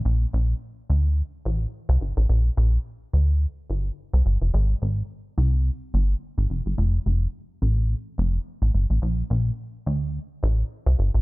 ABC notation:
X:1
M:4/4
L:1/16
Q:"Swing 16ths" 1/4=107
K:Bb
V:1 name="Analog synth bass" clef=bass
B,,,2 B,,,2 z2 D,,3 z A,,,2 z C,, G,,, A,,, | B,,,2 B,,,2 z2 D,,3 z G,,,2 z C,, G,,, F,,, | _A,,,2 A,,,2 z2 C,,3 z G,,,2 z A,,, F,,, G,,, | F,,,2 F,,,2 z2 A,,,3 z F,,,2 z A,,, G,,, A,,, |
B,,,2 B,,,2 z2 D,,3 z A,,,2 z C,, G,,, A,,, |]